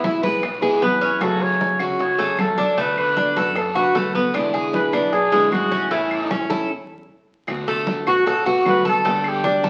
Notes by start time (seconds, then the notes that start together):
Already playing: E2 B2 E3 G#3 B3 E4
0.04 E4, high bongo, high conga, short guiro
0.23 B1 E3 G#3 B3 E4 B4, high conga, short guiro
0.42 muted steel-string acoustic guitar stroke, high bongo, long guiro, claves
0.61 E3 G#3 B3 E4 G#4, high bongo, high conga
0.81 F#1 E3 G#3 B3 E4 B4, high bongo, low bongo, high conga, short guiro
1.01 C#4, short guiro
1.20 C#3 F#3 A3 C#4 F#4 G#4 A4, high bongo, long guiro, claves
1.41 C#5, high bongo, high conga
1.61 high bongo, high conga, short guiro
1.79 C#2 F#3 A3 C#4 F#4 G#4, high conga, short guiro, claves
1.99 C#5, muted steel-string acoustic guitar stroke, high bongo, high conga, long guiro
2.18 F#3 A3 C#4 G#4, high conga
2.38 B1 F#3 A3 C#4 A4, high bongo, low bongo, high conga, short guiro, claves
2.58 D4, high bongo, high conga, short guiro
2.78 B2 D3 A3 B3 F#4 B4, high bongo, high conga, long guiro
2.97 B4, high bongo, high conga, claves
3.17 D4, high bongo, high conga, short guiro
3.36 F#2 D3 A3 B3 F#4 A4, high conga, short guiro
3.56 A4, muted steel-string acoustic guitar stroke, high bongo, high conga, long guiro, claves
3.75 D3 A3 B3 F#4 B4, high bongo, high conga
3.95 E2 D3 A3 B3 F#4, high bongo, low bongo, high conga, short guiro
4.15 B3, high bongo, high conga, short guiro
4.34 B2 D3 G#3 B3 D4 E4, high bongo, high conga, long guiro, claves
4.54 G#4, high bongo, high conga
4.73 B4, high bongo, high conga, short guiro
4.92 B1 D3 G#3 B3 D4 E4, high conga, short guiro, claves
5.12 G#4, muted steel-string acoustic guitar stroke, high bongo, high conga, long guiro
5.31 D3 G#3 B3 E4, high bongo, high conga
5.51 A1 D3 G#3 B3 E4 F#4, high bongo, low bongo, high conga, short guiro, claves
5.71 C#4, high bongo, high conga, short guiro
5.90 E3 A3 C#4 E4, high bongo, high conga, long guiro
6.11 high bongo, high conga, claves
6.31 C#4, high bongo, high conga, short guiro
6.50 E2 A3 C#4 E4 A4, high conga, short guiro
7.47 D2 D3 A3 B3 F#4, high bongo, high conga, long guiro, claves
7.68 A3, high bongo, high conga
7.87 high bongo, high conga, short guiro
8.06 A1 A3 B3 F#4, high conga, short guiro, claves
8.26 A4, muted steel-string acoustic guitar stroke, high bongo, high conga, long guiro
8.45 A3 B3 F#4, high conga
8.65 G1 D3 A3 B3 F#4 B4, high bongo, low bongo, high conga, short guiro, claves
8.85 A4, high bongo, high conga, short guiro
9.05 D3 G3 A3 B3 G4, high bongo, high conga, long guiro
9.24 G4, high bongo, high conga, claves
9.44 D4, high bongo, high conga, short guiro
9.63 D2 G3 B3 G4 A4, high conga, short guiro